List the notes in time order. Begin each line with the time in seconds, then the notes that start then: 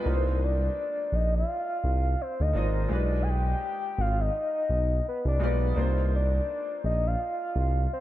Already playing: B4
0.03 C2 A#3 D4 D#4 F4
0.07 B4 C5
0.13 C5
0.44 D5
1.12 A#1 D#5
1.35 F5
1.84 C2
2.21 C5
2.40 D2 D#5
2.53 G#1 A#3 D4 D#4 F4 C5
2.57 D#5
2.88 B1 G#3 D#4 F4 G4
2.93 B4 D5
3.22 G#5
3.29 G5
3.98 G#1 F5
4.21 D#5
4.70 B1
5.08 B4
5.25 C2 D5
5.39 B1 G#3 D#4 F4 G4
5.44 B4 D5
5.75 C2 A#3 D4 D#4 F4
5.79 C5
6.16 D5
6.84 A#1 D#5
7.07 F5
7.56 C2
7.93 C5